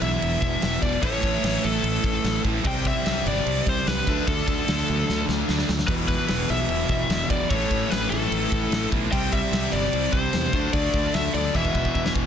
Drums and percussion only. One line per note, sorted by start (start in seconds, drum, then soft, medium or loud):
0.02 crash medium
0.22 crash medium
0.42 kick medium
0.42 crash medium
0.62 snare loud
0.62 crash medium
0.82 kick medium
0.82 crash medium
1.03 kick loud
1.03 crash loud
1.23 kick medium
1.23 crash medium
1.44 snare loud
1.44 crash medium
1.64 crash medium
1.84 crash loud
2.04 kick medium
2.04 crash medium
2.24 snare loud
2.24 crash medium
2.44 kick medium
2.44 crash medium
2.64 kick loud
2.64 crash medium
2.85 kick medium
2.85 crash medium
3.06 snare loud
3.06 crash medium
3.26 crash medium
3.46 crash loud
3.67 kick medium
3.67 crash medium
3.87 snare loud
3.87 crash medium
4.07 kick medium
4.07 crash medium
4.28 kick loud
4.28 crash medium
4.48 kick medium
4.48 crash medium
4.68 snare loud
4.68 crash medium
4.88 crash medium
5.09 snare medium
5.29 snare medium
5.49 snare medium
5.59 snare medium
5.69 snare loud
5.79 snare loud
5.88 kick loud
5.88 crash loud
6.08 kick loud
6.08 crash medium
6.28 snare loud
6.28 crash medium
6.49 crash medium
6.69 crash medium
6.89 kick medium
6.89 crash medium
7.10 snare loud
7.10 crash medium
7.30 kick medium
7.30 crash medium
7.51 kick loud
7.51 crash medium
7.71 kick loud
7.71 crash medium
7.91 snare loud
7.91 crash medium
8.12 crash medium
8.32 crash loud
8.52 kick medium
8.52 crash medium
8.72 snare loud
8.72 crash medium
8.92 kick medium
8.92 crash medium
9.13 kick loud
9.13 crash loud
9.33 kick medium
9.33 crash medium
9.53 snare loud
9.53 crash medium
9.73 crash medium
9.93 crash medium
10.12 kick medium
10.12 crash medium
10.33 snare loud
10.33 crash medium
10.53 kick medium
10.53 crash medium
10.73 kick loud
10.73 crash medium
10.94 kick medium
10.94 crash medium
11.14 snare loud
11.14 crash medium
11.34 crash medium
11.55 kick medium
11.65 kick medium
11.75 kick medium
11.85 kick medium
11.95 kick medium
12.06 snare medium
12.16 kick loud